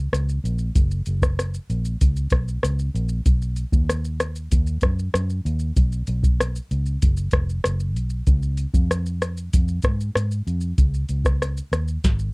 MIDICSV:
0, 0, Header, 1, 3, 480
1, 0, Start_track
1, 0, Key_signature, 6, "major"
1, 0, Tempo, 626370
1, 579, Time_signature, 4, 2, 24, 8
1, 9455, End_track
2, 0, Start_track
2, 0, Title_t, "Fingered electric bass"
2, 0, Program_c, 0, 33
2, 97, Note_on_c, 0, 37, 92
2, 290, Note_off_c, 0, 37, 0
2, 336, Note_on_c, 0, 34, 89
2, 529, Note_off_c, 0, 34, 0
2, 578, Note_on_c, 0, 30, 99
2, 770, Note_off_c, 0, 30, 0
2, 819, Note_on_c, 0, 30, 87
2, 1203, Note_off_c, 0, 30, 0
2, 1300, Note_on_c, 0, 34, 79
2, 1492, Note_off_c, 0, 34, 0
2, 1543, Note_on_c, 0, 37, 97
2, 1734, Note_off_c, 0, 37, 0
2, 1775, Note_on_c, 0, 35, 87
2, 1969, Note_off_c, 0, 35, 0
2, 2019, Note_on_c, 0, 37, 84
2, 2211, Note_off_c, 0, 37, 0
2, 2257, Note_on_c, 0, 34, 88
2, 2450, Note_off_c, 0, 34, 0
2, 2496, Note_on_c, 0, 35, 94
2, 2785, Note_off_c, 0, 35, 0
2, 2854, Note_on_c, 0, 39, 78
2, 3426, Note_off_c, 0, 39, 0
2, 3462, Note_on_c, 0, 39, 85
2, 3653, Note_off_c, 0, 39, 0
2, 3694, Note_on_c, 0, 42, 74
2, 3888, Note_off_c, 0, 42, 0
2, 3938, Note_on_c, 0, 42, 81
2, 4130, Note_off_c, 0, 42, 0
2, 4178, Note_on_c, 0, 39, 83
2, 4371, Note_off_c, 0, 39, 0
2, 4418, Note_on_c, 0, 35, 98
2, 4610, Note_off_c, 0, 35, 0
2, 4658, Note_on_c, 0, 35, 87
2, 5043, Note_off_c, 0, 35, 0
2, 5142, Note_on_c, 0, 37, 73
2, 5333, Note_off_c, 0, 37, 0
2, 5385, Note_on_c, 0, 30, 83
2, 5575, Note_off_c, 0, 30, 0
2, 5615, Note_on_c, 0, 29, 91
2, 5809, Note_off_c, 0, 29, 0
2, 5863, Note_on_c, 0, 30, 91
2, 6099, Note_off_c, 0, 30, 0
2, 6099, Note_on_c, 0, 35, 93
2, 6291, Note_off_c, 0, 35, 0
2, 6338, Note_on_c, 0, 37, 103
2, 6627, Note_off_c, 0, 37, 0
2, 6695, Note_on_c, 0, 41, 82
2, 7267, Note_off_c, 0, 41, 0
2, 7308, Note_on_c, 0, 41, 94
2, 7497, Note_off_c, 0, 41, 0
2, 7538, Note_on_c, 0, 44, 86
2, 7731, Note_off_c, 0, 44, 0
2, 7780, Note_on_c, 0, 44, 80
2, 7972, Note_off_c, 0, 44, 0
2, 8022, Note_on_c, 0, 41, 78
2, 8213, Note_off_c, 0, 41, 0
2, 8262, Note_on_c, 0, 37, 102
2, 8453, Note_off_c, 0, 37, 0
2, 8500, Note_on_c, 0, 37, 83
2, 8883, Note_off_c, 0, 37, 0
2, 8979, Note_on_c, 0, 39, 73
2, 9171, Note_off_c, 0, 39, 0
2, 9227, Note_on_c, 0, 32, 92
2, 9416, Note_off_c, 0, 32, 0
2, 9455, End_track
3, 0, Start_track
3, 0, Title_t, "Drums"
3, 99, Note_on_c, 9, 37, 86
3, 111, Note_on_c, 9, 42, 72
3, 111, Note_on_c, 9, 82, 70
3, 176, Note_off_c, 9, 37, 0
3, 187, Note_off_c, 9, 42, 0
3, 187, Note_off_c, 9, 82, 0
3, 223, Note_on_c, 9, 82, 57
3, 299, Note_off_c, 9, 82, 0
3, 347, Note_on_c, 9, 42, 44
3, 347, Note_on_c, 9, 82, 51
3, 424, Note_off_c, 9, 42, 0
3, 424, Note_off_c, 9, 82, 0
3, 448, Note_on_c, 9, 82, 49
3, 524, Note_off_c, 9, 82, 0
3, 578, Note_on_c, 9, 36, 106
3, 578, Note_on_c, 9, 42, 65
3, 578, Note_on_c, 9, 82, 62
3, 655, Note_off_c, 9, 36, 0
3, 655, Note_off_c, 9, 42, 0
3, 655, Note_off_c, 9, 82, 0
3, 699, Note_on_c, 9, 82, 45
3, 775, Note_off_c, 9, 82, 0
3, 811, Note_on_c, 9, 42, 56
3, 811, Note_on_c, 9, 82, 53
3, 888, Note_off_c, 9, 42, 0
3, 888, Note_off_c, 9, 82, 0
3, 934, Note_on_c, 9, 36, 86
3, 939, Note_on_c, 9, 82, 48
3, 943, Note_on_c, 9, 37, 86
3, 1011, Note_off_c, 9, 36, 0
3, 1016, Note_off_c, 9, 82, 0
3, 1020, Note_off_c, 9, 37, 0
3, 1065, Note_on_c, 9, 37, 82
3, 1068, Note_on_c, 9, 42, 68
3, 1068, Note_on_c, 9, 82, 67
3, 1142, Note_off_c, 9, 37, 0
3, 1145, Note_off_c, 9, 42, 0
3, 1145, Note_off_c, 9, 82, 0
3, 1182, Note_on_c, 9, 82, 63
3, 1258, Note_off_c, 9, 82, 0
3, 1303, Note_on_c, 9, 42, 54
3, 1303, Note_on_c, 9, 82, 47
3, 1379, Note_off_c, 9, 42, 0
3, 1379, Note_off_c, 9, 82, 0
3, 1417, Note_on_c, 9, 82, 57
3, 1494, Note_off_c, 9, 82, 0
3, 1542, Note_on_c, 9, 42, 82
3, 1542, Note_on_c, 9, 82, 78
3, 1543, Note_on_c, 9, 36, 96
3, 1618, Note_off_c, 9, 42, 0
3, 1618, Note_off_c, 9, 82, 0
3, 1620, Note_off_c, 9, 36, 0
3, 1659, Note_on_c, 9, 82, 48
3, 1735, Note_off_c, 9, 82, 0
3, 1765, Note_on_c, 9, 42, 57
3, 1765, Note_on_c, 9, 82, 52
3, 1775, Note_on_c, 9, 36, 89
3, 1781, Note_on_c, 9, 37, 90
3, 1841, Note_off_c, 9, 42, 0
3, 1841, Note_off_c, 9, 82, 0
3, 1851, Note_off_c, 9, 36, 0
3, 1858, Note_off_c, 9, 37, 0
3, 1903, Note_on_c, 9, 82, 50
3, 1979, Note_off_c, 9, 82, 0
3, 2016, Note_on_c, 9, 37, 88
3, 2027, Note_on_c, 9, 42, 77
3, 2027, Note_on_c, 9, 82, 68
3, 2093, Note_off_c, 9, 37, 0
3, 2104, Note_off_c, 9, 42, 0
3, 2104, Note_off_c, 9, 82, 0
3, 2139, Note_on_c, 9, 82, 55
3, 2216, Note_off_c, 9, 82, 0
3, 2265, Note_on_c, 9, 42, 50
3, 2265, Note_on_c, 9, 82, 49
3, 2342, Note_off_c, 9, 42, 0
3, 2342, Note_off_c, 9, 82, 0
3, 2366, Note_on_c, 9, 82, 49
3, 2443, Note_off_c, 9, 82, 0
3, 2496, Note_on_c, 9, 42, 69
3, 2496, Note_on_c, 9, 82, 56
3, 2497, Note_on_c, 9, 36, 106
3, 2573, Note_off_c, 9, 42, 0
3, 2573, Note_off_c, 9, 82, 0
3, 2574, Note_off_c, 9, 36, 0
3, 2620, Note_on_c, 9, 82, 47
3, 2697, Note_off_c, 9, 82, 0
3, 2731, Note_on_c, 9, 42, 53
3, 2731, Note_on_c, 9, 82, 54
3, 2807, Note_off_c, 9, 42, 0
3, 2807, Note_off_c, 9, 82, 0
3, 2854, Note_on_c, 9, 36, 89
3, 2859, Note_on_c, 9, 82, 48
3, 2931, Note_off_c, 9, 36, 0
3, 2936, Note_off_c, 9, 82, 0
3, 2984, Note_on_c, 9, 37, 85
3, 2987, Note_on_c, 9, 42, 61
3, 2987, Note_on_c, 9, 82, 64
3, 3061, Note_off_c, 9, 37, 0
3, 3064, Note_off_c, 9, 42, 0
3, 3064, Note_off_c, 9, 82, 0
3, 3101, Note_on_c, 9, 82, 66
3, 3177, Note_off_c, 9, 82, 0
3, 3219, Note_on_c, 9, 42, 49
3, 3219, Note_on_c, 9, 82, 53
3, 3220, Note_on_c, 9, 37, 86
3, 3296, Note_off_c, 9, 37, 0
3, 3296, Note_off_c, 9, 42, 0
3, 3296, Note_off_c, 9, 82, 0
3, 3338, Note_on_c, 9, 82, 54
3, 3414, Note_off_c, 9, 82, 0
3, 3460, Note_on_c, 9, 42, 79
3, 3460, Note_on_c, 9, 82, 78
3, 3464, Note_on_c, 9, 36, 94
3, 3537, Note_off_c, 9, 42, 0
3, 3537, Note_off_c, 9, 82, 0
3, 3540, Note_off_c, 9, 36, 0
3, 3577, Note_on_c, 9, 82, 52
3, 3654, Note_off_c, 9, 82, 0
3, 3686, Note_on_c, 9, 42, 55
3, 3686, Note_on_c, 9, 82, 53
3, 3696, Note_on_c, 9, 36, 98
3, 3703, Note_on_c, 9, 37, 91
3, 3763, Note_off_c, 9, 42, 0
3, 3763, Note_off_c, 9, 82, 0
3, 3772, Note_off_c, 9, 36, 0
3, 3779, Note_off_c, 9, 37, 0
3, 3825, Note_on_c, 9, 82, 50
3, 3902, Note_off_c, 9, 82, 0
3, 3938, Note_on_c, 9, 37, 97
3, 3949, Note_on_c, 9, 42, 70
3, 3949, Note_on_c, 9, 82, 72
3, 4015, Note_off_c, 9, 37, 0
3, 4026, Note_off_c, 9, 42, 0
3, 4026, Note_off_c, 9, 82, 0
3, 4060, Note_on_c, 9, 82, 53
3, 4137, Note_off_c, 9, 82, 0
3, 4185, Note_on_c, 9, 42, 47
3, 4185, Note_on_c, 9, 82, 48
3, 4262, Note_off_c, 9, 42, 0
3, 4262, Note_off_c, 9, 82, 0
3, 4286, Note_on_c, 9, 82, 50
3, 4363, Note_off_c, 9, 82, 0
3, 4418, Note_on_c, 9, 36, 95
3, 4418, Note_on_c, 9, 42, 61
3, 4418, Note_on_c, 9, 82, 65
3, 4494, Note_off_c, 9, 42, 0
3, 4494, Note_off_c, 9, 82, 0
3, 4495, Note_off_c, 9, 36, 0
3, 4539, Note_on_c, 9, 82, 44
3, 4615, Note_off_c, 9, 82, 0
3, 4652, Note_on_c, 9, 42, 58
3, 4652, Note_on_c, 9, 82, 53
3, 4729, Note_off_c, 9, 42, 0
3, 4729, Note_off_c, 9, 82, 0
3, 4775, Note_on_c, 9, 36, 94
3, 4782, Note_on_c, 9, 82, 53
3, 4852, Note_off_c, 9, 36, 0
3, 4858, Note_off_c, 9, 82, 0
3, 4908, Note_on_c, 9, 37, 92
3, 4911, Note_on_c, 9, 42, 66
3, 4911, Note_on_c, 9, 82, 58
3, 4984, Note_off_c, 9, 37, 0
3, 4988, Note_off_c, 9, 42, 0
3, 4988, Note_off_c, 9, 82, 0
3, 5024, Note_on_c, 9, 82, 62
3, 5101, Note_off_c, 9, 82, 0
3, 5143, Note_on_c, 9, 42, 51
3, 5143, Note_on_c, 9, 82, 47
3, 5220, Note_off_c, 9, 42, 0
3, 5220, Note_off_c, 9, 82, 0
3, 5257, Note_on_c, 9, 82, 50
3, 5333, Note_off_c, 9, 82, 0
3, 5381, Note_on_c, 9, 42, 77
3, 5381, Note_on_c, 9, 82, 73
3, 5384, Note_on_c, 9, 36, 96
3, 5458, Note_off_c, 9, 42, 0
3, 5458, Note_off_c, 9, 82, 0
3, 5460, Note_off_c, 9, 36, 0
3, 5494, Note_on_c, 9, 82, 52
3, 5571, Note_off_c, 9, 82, 0
3, 5603, Note_on_c, 9, 42, 55
3, 5603, Note_on_c, 9, 82, 51
3, 5615, Note_on_c, 9, 36, 89
3, 5619, Note_on_c, 9, 37, 98
3, 5680, Note_off_c, 9, 42, 0
3, 5680, Note_off_c, 9, 82, 0
3, 5691, Note_off_c, 9, 36, 0
3, 5696, Note_off_c, 9, 37, 0
3, 5743, Note_on_c, 9, 82, 49
3, 5820, Note_off_c, 9, 82, 0
3, 5855, Note_on_c, 9, 37, 99
3, 5866, Note_on_c, 9, 42, 78
3, 5866, Note_on_c, 9, 82, 76
3, 5932, Note_off_c, 9, 37, 0
3, 5943, Note_off_c, 9, 42, 0
3, 5943, Note_off_c, 9, 82, 0
3, 5977, Note_on_c, 9, 82, 54
3, 6054, Note_off_c, 9, 82, 0
3, 6104, Note_on_c, 9, 42, 52
3, 6104, Note_on_c, 9, 82, 50
3, 6180, Note_off_c, 9, 42, 0
3, 6180, Note_off_c, 9, 82, 0
3, 6206, Note_on_c, 9, 82, 49
3, 6283, Note_off_c, 9, 82, 0
3, 6336, Note_on_c, 9, 42, 60
3, 6336, Note_on_c, 9, 82, 56
3, 6338, Note_on_c, 9, 36, 106
3, 6412, Note_off_c, 9, 42, 0
3, 6412, Note_off_c, 9, 82, 0
3, 6415, Note_off_c, 9, 36, 0
3, 6457, Note_on_c, 9, 82, 43
3, 6534, Note_off_c, 9, 82, 0
3, 6570, Note_on_c, 9, 42, 55
3, 6570, Note_on_c, 9, 82, 57
3, 6647, Note_off_c, 9, 42, 0
3, 6647, Note_off_c, 9, 82, 0
3, 6696, Note_on_c, 9, 36, 94
3, 6700, Note_on_c, 9, 82, 49
3, 6772, Note_off_c, 9, 36, 0
3, 6776, Note_off_c, 9, 82, 0
3, 6827, Note_on_c, 9, 37, 84
3, 6830, Note_on_c, 9, 42, 62
3, 6830, Note_on_c, 9, 82, 65
3, 6904, Note_off_c, 9, 37, 0
3, 6907, Note_off_c, 9, 42, 0
3, 6907, Note_off_c, 9, 82, 0
3, 6943, Note_on_c, 9, 82, 63
3, 7020, Note_off_c, 9, 82, 0
3, 7064, Note_on_c, 9, 42, 49
3, 7064, Note_on_c, 9, 82, 52
3, 7065, Note_on_c, 9, 37, 74
3, 7141, Note_off_c, 9, 37, 0
3, 7141, Note_off_c, 9, 42, 0
3, 7141, Note_off_c, 9, 82, 0
3, 7182, Note_on_c, 9, 82, 49
3, 7259, Note_off_c, 9, 82, 0
3, 7306, Note_on_c, 9, 42, 84
3, 7306, Note_on_c, 9, 82, 82
3, 7307, Note_on_c, 9, 36, 96
3, 7383, Note_off_c, 9, 42, 0
3, 7383, Note_off_c, 9, 82, 0
3, 7384, Note_off_c, 9, 36, 0
3, 7420, Note_on_c, 9, 82, 49
3, 7496, Note_off_c, 9, 82, 0
3, 7528, Note_on_c, 9, 42, 54
3, 7528, Note_on_c, 9, 82, 55
3, 7538, Note_on_c, 9, 36, 93
3, 7545, Note_on_c, 9, 37, 96
3, 7605, Note_off_c, 9, 42, 0
3, 7605, Note_off_c, 9, 82, 0
3, 7615, Note_off_c, 9, 36, 0
3, 7622, Note_off_c, 9, 37, 0
3, 7667, Note_on_c, 9, 82, 52
3, 7744, Note_off_c, 9, 82, 0
3, 7782, Note_on_c, 9, 37, 101
3, 7793, Note_on_c, 9, 42, 76
3, 7793, Note_on_c, 9, 82, 73
3, 7858, Note_off_c, 9, 37, 0
3, 7869, Note_off_c, 9, 42, 0
3, 7869, Note_off_c, 9, 82, 0
3, 7904, Note_on_c, 9, 82, 53
3, 7980, Note_off_c, 9, 82, 0
3, 8027, Note_on_c, 9, 42, 48
3, 8027, Note_on_c, 9, 82, 50
3, 8104, Note_off_c, 9, 42, 0
3, 8104, Note_off_c, 9, 82, 0
3, 8129, Note_on_c, 9, 82, 50
3, 8206, Note_off_c, 9, 82, 0
3, 8261, Note_on_c, 9, 36, 110
3, 8261, Note_on_c, 9, 42, 67
3, 8261, Note_on_c, 9, 82, 67
3, 8338, Note_off_c, 9, 36, 0
3, 8338, Note_off_c, 9, 42, 0
3, 8338, Note_off_c, 9, 82, 0
3, 8385, Note_on_c, 9, 82, 45
3, 8461, Note_off_c, 9, 82, 0
3, 8497, Note_on_c, 9, 42, 53
3, 8497, Note_on_c, 9, 82, 57
3, 8573, Note_off_c, 9, 42, 0
3, 8573, Note_off_c, 9, 82, 0
3, 8618, Note_on_c, 9, 36, 94
3, 8624, Note_on_c, 9, 82, 50
3, 8628, Note_on_c, 9, 37, 91
3, 8695, Note_off_c, 9, 36, 0
3, 8701, Note_off_c, 9, 82, 0
3, 8705, Note_off_c, 9, 37, 0
3, 8752, Note_on_c, 9, 37, 90
3, 8755, Note_on_c, 9, 42, 66
3, 8755, Note_on_c, 9, 82, 65
3, 8828, Note_off_c, 9, 37, 0
3, 8831, Note_off_c, 9, 42, 0
3, 8831, Note_off_c, 9, 82, 0
3, 8869, Note_on_c, 9, 82, 62
3, 8945, Note_off_c, 9, 82, 0
3, 8988, Note_on_c, 9, 37, 86
3, 8988, Note_on_c, 9, 42, 48
3, 8988, Note_on_c, 9, 82, 50
3, 9064, Note_off_c, 9, 42, 0
3, 9064, Note_off_c, 9, 82, 0
3, 9065, Note_off_c, 9, 37, 0
3, 9103, Note_on_c, 9, 82, 54
3, 9180, Note_off_c, 9, 82, 0
3, 9228, Note_on_c, 9, 36, 95
3, 9228, Note_on_c, 9, 42, 87
3, 9228, Note_on_c, 9, 82, 78
3, 9230, Note_on_c, 9, 38, 60
3, 9305, Note_off_c, 9, 36, 0
3, 9305, Note_off_c, 9, 42, 0
3, 9305, Note_off_c, 9, 82, 0
3, 9307, Note_off_c, 9, 38, 0
3, 9343, Note_on_c, 9, 82, 48
3, 9419, Note_off_c, 9, 82, 0
3, 9455, End_track
0, 0, End_of_file